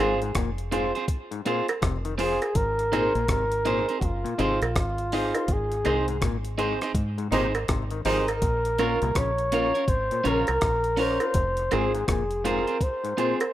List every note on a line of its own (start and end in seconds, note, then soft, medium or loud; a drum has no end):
0.00 0.33 G#1 medium
0.00 0.14 G#2 medium
0.00 0.19 C4 medium
0.00 0.16 F4 medium
0.00 0.19 F4 medium
0.00 0.16 G#4 medium
0.00 0.36 G#4 medium
0.00 0.19 G#4 medium
0.00 0.16 C5 medium
0.00 0.19 C5 medium
0.00 cowbell medium
0.22 0.31 G#2 medium
0.22 closed hi-hat soft
0.35 0.91 F1 medium
0.35 0.51 A#2 medium
0.35 kick loud
0.35 cross-stick loud
0.35 closed hi-hat medium
0.58 closed hi-hat medium
0.71 0.87 G#2 medium
0.71 0.92 C4 medium
0.71 0.92 F4 medium
0.71 0.89 F4 medium
0.71 0.89 G#4 medium
0.71 0.92 G#4 medium
0.71 0.92 C5 medium
0.71 0.90 C5 medium
0.71 closed hi-hat medium
0.95 1.05 C4 medium
0.95 1.05 F4 medium
0.95 1.05 G#4 medium
0.95 1.04 C5 medium
0.95 closed hi-hat soft
1.08 kick loud
1.08 closed hi-hat medium
1.31 1.41 G#2 medium
1.31 closed hi-hat soft
1.45 1.61 A#2 medium
1.45 1.65 C4 medium
1.45 1.63 F4 medium
1.45 1.66 F4 medium
1.45 1.63 G#4 medium
1.45 1.66 G#4 medium
1.45 1.63 C5 medium
1.45 1.66 C5 medium
1.45 closed hi-hat medium
1.68 closed hi-hat medium
1.68 cowbell medium
1.82 2.38 F1 medium
1.82 1.97 C3 medium
1.82 kick loud
1.82 cross-stick loud
1.82 closed hi-hat medium
2.05 2.14 D#3 medium
2.05 closed hi-hat soft
2.18 2.34 F3 medium
2.18 2.38 C4 medium
2.18 2.39 F4 medium
2.18 2.36 F4 medium
2.18 2.39 G#4 medium
2.18 2.36 G#4 medium
2.18 2.57 G#4 medium
2.18 2.39 C5 medium
2.18 2.37 C5 medium
2.18 open hi-hat medium
2.42 closed hi-hat medium
2.42 cowbell medium
2.55 3.11 G#1 loud
2.55 3.29 A#4 loud
2.55 kick loud
2.55 closed hi-hat medium
2.79 closed hi-hat soft
2.92 3.07 A#2 medium
2.92 3.12 C4 medium
2.92 3.09 D#4 medium
2.92 3.12 D#4 medium
2.92 3.09 G#4 medium
2.92 3.12 G#4 medium
2.92 3.10 C5 loud
2.92 3.13 C5 medium
2.92 closed hi-hat medium
2.92 cowbell medium
3.15 3.28 A#1 medium
3.15 3.25 A#2 medium
3.15 closed hi-hat soft
3.28 3.85 G#1 medium
3.28 3.44 C3 medium
3.28 4.01 A#4 loud
3.28 kick medium
3.28 cross-stick loud
3.28 closed hi-hat medium
3.52 closed hi-hat medium
3.65 3.81 A#2 medium
3.65 3.85 C4 medium
3.65 3.82 D#4 medium
3.65 3.85 D#4 medium
3.65 3.82 G#4 medium
3.65 3.86 G#4 medium
3.65 3.83 C5 medium
3.65 3.86 C5 medium
3.65 closed hi-hat medium
3.88 3.98 C4 soft
3.88 3.98 D#4 soft
3.88 3.98 G#4 soft
3.88 3.98 C5 medium
3.88 closed hi-hat soft
3.99 4.23 F#1 medium
3.99 4.07 F#4 medium
3.99 kick loud
3.99 closed hi-hat medium
4.05 4.77 F4 medium
4.24 4.34 A#2 medium
4.24 closed hi-hat soft
4.38 4.60 G#1 medium
4.38 4.54 C3 medium
4.38 4.58 C4 medium
4.38 4.55 D#4 medium
4.38 4.59 D#4 medium
4.38 4.56 G#4 medium
4.38 4.59 G#4 medium
4.38 4.56 C5 medium
4.38 4.59 C5 medium
4.38 closed hi-hat medium
4.62 4.75 A#1 medium
4.62 closed hi-hat soft
4.62 cowbell medium
4.76 5.31 G#1 medium
4.76 5.54 F4 medium
4.76 kick loud
4.76 cross-stick loud
4.76 closed hi-hat medium
4.98 closed hi-hat soft
5.12 5.32 C4 medium
5.12 5.29 D#4 medium
5.12 5.32 D#4 medium
5.12 5.29 G#4 medium
5.12 5.33 G#4 medium
5.12 5.30 C5 loud
5.12 5.33 C5 medium
5.12 open hi-hat medium
5.35 5.45 D#4 medium
5.35 5.45 G#4 medium
5.35 5.46 C5 medium
5.35 closed hi-hat medium
5.35 cowbell medium
5.48 5.83 G#1 medium
5.48 kick loud
5.48 closed hi-hat medium
5.52 6.24 G#4 medium
5.72 closed hi-hat medium
5.84 6.20 C2 medium
5.84 6.00 G#2 medium
5.84 6.05 C4 medium
5.84 6.02 D#4 medium
5.84 6.05 D#4 medium
5.84 6.02 G#4 medium
5.84 6.05 G#4 medium
5.84 6.02 C5 medium
5.84 6.06 C5 medium
5.84 closed hi-hat medium
5.84 cowbell medium
6.08 6.17 G#2 medium
6.08 closed hi-hat soft
6.21 6.78 G#1 medium
6.21 6.37 A#2 medium
6.21 kick medium
6.21 cross-stick medium
6.21 closed hi-hat medium
6.45 closed hi-hat medium
6.58 6.74 G#2 medium
6.58 6.78 C4 medium
6.58 6.75 D#4 medium
6.58 6.78 D#4 medium
6.58 6.75 G#4 medium
6.58 6.78 G#4 medium
6.58 6.76 C5 medium
6.58 6.79 C5 medium
6.58 closed hi-hat medium
6.81 6.92 C4 medium
6.81 6.91 D#4 medium
6.81 6.91 G#4 medium
6.81 6.91 C5 medium
6.81 cross-stick medium
6.81 closed hi-hat soft
6.94 7.29 G#2 medium
6.94 kick loud
6.94 closed hi-hat medium
7.18 7.27 G#2 medium
7.18 closed hi-hat soft
7.31 7.66 G#1 medium
7.31 7.47 A#2 medium
7.31 7.46 C3 medium
7.31 7.47 G#3 medium
7.31 7.52 C4 medium
7.31 7.46 D#4 loud
7.31 7.49 D#4 medium
7.31 7.52 D#4 loud
7.31 7.49 G#4 medium
7.31 7.52 G#4 medium
7.31 7.49 C5 medium
7.31 7.53 C5 medium
7.31 closed hi-hat medium
7.55 closed hi-hat soft
7.55 cowbell medium
7.68 8.03 G#1 medium
7.68 7.84 C3 medium
7.68 kick loud
7.68 cross-stick loud
7.68 closed hi-hat medium
7.91 8.01 D#3 medium
7.91 closed hi-hat soft
8.05 8.39 G#1 medium
8.05 8.29 C3 medium
8.05 8.21 F3 medium
8.05 8.29 G#3 medium
8.05 8.25 C4 medium
8.05 8.22 D#4 medium
8.05 8.29 D#4 loud
8.05 8.25 D#4 medium
8.05 8.22 G#4 medium
8.05 8.25 G#4 medium
8.05 9.19 A#4 loud
8.05 8.22 C5 medium
8.05 8.26 C5 medium
8.05 open hi-hat medium
8.28 closed hi-hat medium
8.28 cowbell medium
8.42 8.98 A#1 loud
8.42 kick loud
8.42 closed hi-hat medium
8.65 closed hi-hat medium
8.78 8.94 A#2 medium
8.78 8.98 C#4 medium
8.78 8.95 C#4 medium
8.78 8.99 F4 medium
8.78 8.96 F4 medium
8.78 8.99 A#4 medium
8.78 8.96 A#4 medium
8.78 8.99 C#5 medium
8.78 closed hi-hat medium
8.78 cowbell medium
9.02 9.15 C2 medium
9.02 9.11 A#2 medium
9.02 closed hi-hat soft
9.15 9.71 A#1 medium
9.15 9.31 C#3 medium
9.15 9.90 C#5 loud
9.15 kick medium
9.15 cross-stick loud
9.15 closed hi-hat loud
9.38 closed hi-hat soft
9.52 9.68 A#2 medium
9.52 9.72 C#4 medium
9.52 9.69 C#4 medium
9.52 9.72 F4 medium
9.52 9.69 F4 medium
9.52 9.72 A#4 medium
9.52 9.69 A#4 medium
9.52 9.73 C#5 medium
9.52 closed hi-hat medium
9.74 9.85 C#4 soft
9.74 9.84 F4 soft
9.74 9.84 A#4 medium
9.74 9.84 C#5 medium
9.74 closed hi-hat soft
9.88 10.10 G#1 medium
9.88 10.29 C5 loud
9.88 kick loud
9.88 closed hi-hat medium
10.11 10.21 A#2 medium
10.11 closed hi-hat soft
10.24 10.47 A#1 medium
10.24 10.41 C#3 medium
10.24 10.44 C#4 medium
10.24 10.42 C#4 medium
10.24 10.44 F4 medium
10.24 10.42 F4 medium
10.24 10.45 A#4 medium
10.24 10.43 A#4 medium
10.24 11.01 A#4 loud
10.24 10.45 C#5 medium
10.24 closed hi-hat medium
10.47 10.61 C2 medium
10.47 closed hi-hat medium
10.47 cowbell medium
10.61 11.18 A#1 medium
10.61 kick loud
10.61 cross-stick loud
10.61 closed hi-hat medium
10.84 closed hi-hat soft
10.97 11.17 C#4 medium
10.97 11.15 C#4 medium
10.97 11.18 F4 medium
10.97 11.15 F4 medium
10.97 11.18 A#4 medium
10.97 11.16 A#4 loud
10.97 11.75 C5 loud
10.97 11.18 C#5 medium
10.97 open hi-hat medium
11.20 11.31 C#4 medium
11.20 11.32 F4 medium
11.20 11.32 A#4 medium
11.20 closed hi-hat medium
11.20 cowbell medium
11.34 11.69 F1 loud
11.34 kick loud
11.34 closed hi-hat loud
11.57 closed hi-hat medium
11.71 12.07 G#1 medium
11.71 11.87 G#2 medium
11.71 11.88 C4 medium
11.71 11.91 C4 medium
11.71 11.91 F4 medium
11.71 11.89 F4 medium
11.71 11.89 G#4 loud
11.71 11.92 G#4 medium
11.71 12.08 G#4 loud
11.71 11.92 C5 medium
11.71 closed hi-hat medium
11.71 cowbell medium
11.94 12.04 G#2 medium
11.94 closed hi-hat soft
12.08 12.64 F1 medium
12.08 12.23 A#2 medium
12.08 12.48 G#4 medium
12.08 kick loud
12.08 cross-stick loud
12.08 closed hi-hat medium
12.31 closed hi-hat medium
12.44 12.60 G#2 medium
12.44 12.61 C4 medium
12.44 12.64 C4 medium
12.44 12.62 F4 medium
12.44 12.65 F4 medium
12.44 12.62 G#4 medium
12.44 12.65 G#4 medium
12.44 12.84 A#4 medium
12.44 12.65 C5 medium
12.44 closed hi-hat medium
12.67 12.78 C4 medium
12.67 12.77 F4 medium
12.67 12.77 G#4 medium
12.67 12.77 C5 medium
12.67 closed hi-hat soft
12.81 13.53 C5 loud
12.81 kick loud
12.81 closed hi-hat medium
13.04 13.13 G#2 medium
13.04 closed hi-hat soft
13.17 13.33 A#2 medium
13.17 13.35 C4 medium
13.17 13.37 C4 medium
13.17 13.38 F4 medium
13.17 13.35 F4 medium
13.17 13.35 G#4 medium
13.17 13.38 G#4 medium
13.17 13.38 C5 medium
13.17 closed hi-hat medium
13.40 closed hi-hat soft
13.40 cowbell medium